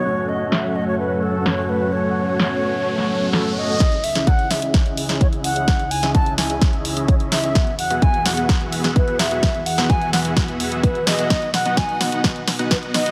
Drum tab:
HH |----------------|----------------|xxoxxxoxxxoxxxox|xxoxxxoxxxoxxxox|
SD |----o-------o---|----o----o--o---|o--o--o-o--o----|o--o--o-o-----o-|
BD |----------------|----------------|o---o---o---o---|o---o---o---o---|

HH |xxoxxxoxxxoxxxox|xxoxxxoxxxoxxxox|xxoxxxoxxxoxxxox|
SD |o-----o-o--o--o-|o--o--o-o-----o-|o-o-o-o-o-o-o-o-|
BD |o---o---o---o---|o---o---o---o---|o---o---o---o---|